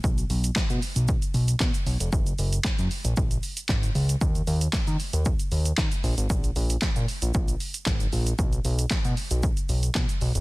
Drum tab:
HH |-xox-xox-xox-xox|-xox-xox-xox-xox|-xox-xox-xox-xox|-xox-xox-xox-xox|
SH |xxxxxxxxxxxxxxxx|xxxxxxxxxxxxxxxx|xxxxxxxxxxxxxxxx|xxxxxxxxxxxxxxxx|
CP |----x-------x---|----x-------x---|----x-------x---|----x-------x---|
SD |----o-------o---|----o-------o---|----o-------o---|----o-------o---|
BD |o---o---o---o---|o---o---o---o---|o---o---o---o---|o---o---o---o---|

HH |-xox-xox-xox-xox|
SH |xxxxxxxxxxxxxxxx|
CP |----x-------x---|
SD |----o-------o---|
BD |o---o---o---o---|